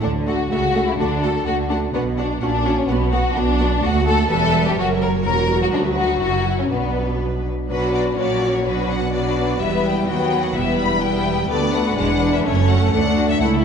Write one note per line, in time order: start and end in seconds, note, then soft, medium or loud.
0.01 0.45 D2 medium
0.01 0.45 D3 medium
0.01 0.10 A3 soft
0.01 0.11 D4 medium
0.01 0.10 A4 soft
0.01 0.09 F#5 soft
0.26 0.34 A3 soft
0.26 0.49 F#4 medium
0.26 0.35 A4 soft
0.26 0.35 F#5 soft
0.50 0.93 C#2 medium
0.50 0.93 C#3 medium
0.50 0.58 A3 soft
0.50 0.85 F#4 medium
0.50 0.58 A4 soft
0.50 0.59 E5 soft
0.75 0.83 A3 soft
0.75 0.83 A4 soft
0.75 0.84 E5 soft
0.88 0.99 E4 soft
0.98 1.41 D2 medium
0.98 1.41 D3 medium
0.98 1.08 A3 soft
0.98 1.22 D4 medium
0.98 1.07 F#4 soft
0.98 1.09 F#5 soft
1.22 1.32 A3 soft
1.22 1.31 F#4 soft
1.22 1.46 A4 medium
1.22 1.31 F#5 soft
1.46 1.88 D2 medium
1.46 1.89 D3 medium
1.46 1.55 A3 soft
1.46 1.54 F#4 medium
1.46 1.55 F#4 soft
1.46 1.55 F#5 soft
1.70 1.79 A3 soft
1.70 1.78 D4 medium
1.70 1.79 F#4 soft
1.70 1.79 F#5 soft
1.94 2.36 B1 medium
1.94 2.36 B2 medium
1.94 2.02 B3 medium
1.94 2.02 D4 soft
1.94 2.02 F#4 medium
1.94 2.02 F#5 soft
2.17 2.41 D4 medium
2.17 2.26 D4 soft
2.17 2.27 F#4 soft
2.17 2.25 F#5 soft
2.41 2.83 A#1 medium
2.41 2.83 A#2 medium
2.41 2.50 C#4 soft
2.41 2.76 D4 medium
2.41 2.50 F#4 soft
2.41 2.49 F#5 soft
2.65 2.73 C#4 soft
2.65 2.73 F#4 soft
2.65 2.74 F#5 soft
2.77 2.88 C#4 soft
2.88 3.30 B1 medium
2.88 3.30 B2 medium
2.88 3.12 B3 medium
2.88 2.98 B3 medium
2.88 2.98 F#4 soft
2.88 2.96 F#5 medium
3.12 3.21 B3 soft
3.12 3.35 F#4 medium
3.12 3.21 F#4 soft
3.12 3.21 F#5 soft
3.35 3.77 B1 medium
3.35 3.77 B2 medium
3.35 3.45 B3 medium
3.35 3.82 D4 medium
3.35 3.45 F#4 medium
3.35 3.44 F#5 soft
3.59 3.68 B3 soft
3.59 3.68 F#4 medium
3.59 3.67 F#5 medium
3.82 4.27 D2 medium
3.82 4.26 A3 medium
3.82 4.26 F#4 medium
3.82 4.06 F#4 medium
3.82 4.26 F#5 medium
4.07 4.30 A4 medium
4.29 4.78 E1 medium
4.29 4.77 E2 medium
4.29 4.74 G3 medium
4.29 4.65 A4 medium
4.29 4.74 B4 medium
4.29 4.74 E5 medium
4.67 4.78 G4 medium
4.77 5.24 F#1 medium
4.77 5.24 F#2 medium
4.77 6.67 F#3 medium
4.77 4.86 F#4 medium
4.77 5.22 A#4 medium
4.77 5.68 C#5 medium
5.03 5.11 A#4 medium
5.25 5.73 E1 medium
5.25 5.72 E2 medium
5.25 6.17 F#4 medium
5.25 5.61 A#4 medium
5.62 5.67 F#4 medium
5.72 6.20 D2 medium
5.72 5.81 D4 medium
5.72 6.18 B4 medium
5.97 6.20 F#4 medium
6.21 6.70 F#1 medium
6.21 6.70 F#2 medium
6.21 6.68 E4 soft
6.21 6.58 F#4 medium
6.21 6.68 A#4 soft
6.60 6.64 C#4 soft
6.70 7.48 B1 soft
6.70 7.48 B2 soft
6.70 7.45 F#3 soft
6.70 7.20 B3 medium
6.70 7.46 D4 soft
6.70 7.46 B4 soft
7.69 8.15 B1 soft
7.69 8.15 B2 soft
7.69 8.14 F#3 soft
7.69 8.15 D4 soft
7.69 8.15 F#4 soft
7.69 7.93 B4 medium
7.69 8.15 B4 soft
7.94 8.02 D5 medium
8.17 8.65 A#1 soft
8.17 8.65 A#2 soft
8.17 8.65 F#3 soft
8.17 8.66 C#4 soft
8.17 8.64 F#4 soft
8.17 8.65 C#5 soft
8.17 8.53 D5 medium
8.55 8.66 C#5 medium
8.65 9.61 B1 soft
8.65 9.61 B2 medium
8.65 9.12 F#3 soft
8.65 9.12 D4 soft
8.65 9.12 F#4 soft
8.65 9.12 B4 soft
8.65 8.89 B4 medium
8.90 9.14 F#5 medium
9.13 9.60 F#3 soft
9.13 9.60 D4 medium
9.13 9.60 F#4 soft
9.13 9.60 B4 soft
9.13 9.60 D5 medium
9.60 10.07 E1 medium
9.60 10.07 E2 soft
9.60 10.08 G3 soft
9.60 10.07 B3 soft
9.60 10.08 E4 soft
9.60 10.08 B4 soft
9.60 9.84 E5 medium
9.85 10.07 G5 medium
10.08 10.54 D#2 medium
10.08 10.56 F#3 medium
10.08 10.55 B3 medium
10.08 10.55 F#4 soft
10.08 10.54 B4 soft
10.08 10.43 G5 medium
10.44 10.55 F#5 medium
10.55 11.50 E1 medium
10.55 11.50 E2 medium
10.55 11.01 G3 medium
10.55 11.00 B3 soft
10.55 11.02 E4 soft
10.55 11.02 B4 medium
10.55 10.79 E5 medium
10.77 11.01 B5 medium
11.02 11.49 G3 medium
11.02 11.48 B3 medium
11.02 11.49 E4 medium
11.02 11.49 B4 medium
11.02 11.50 G5 medium
11.49 11.89 D2 medium
11.49 11.90 D2 medium
11.49 11.94 A3 medium
11.49 11.61 A3 medium
11.49 11.94 B3 medium
11.49 12.41 B4 medium
11.49 11.73 D5 medium
11.62 11.74 B3 medium
11.74 11.86 D4 soft
11.74 11.97 F#5 medium
11.86 11.97 F#4 medium
11.97 12.37 E1 medium
11.97 12.37 E2 medium
11.97 12.08 G#3 medium
11.97 12.45 G#3 medium
11.97 12.45 D4 medium
11.97 12.32 F#5 medium
12.09 12.21 B3 medium
12.20 12.32 D4 soft
12.32 12.44 E4 medium
12.32 12.45 E5 medium
12.44 12.85 F#1 medium
12.44 12.85 F#2 medium
12.44 12.55 A3 medium
12.44 13.39 A3 medium
12.44 12.93 C#4 medium
12.44 12.80 A4 medium
12.44 12.68 C#5 medium
12.56 12.68 C#4 medium
12.69 12.81 F#4 soft
12.69 12.92 F#5 medium
12.81 12.93 A4 medium
12.92 13.32 D2 medium
12.92 13.03 A3 medium
12.92 13.40 D4 medium
12.92 13.28 F#5 medium
13.04 13.16 D4 medium
13.16 13.28 F#4 medium
13.29 13.40 A4 medium
13.29 13.41 E5 medium
13.40 13.65 C#2 medium
13.40 13.65 A3 medium
13.40 13.65 E4 medium
13.40 13.65 A4 medium
13.40 13.49 F#5 medium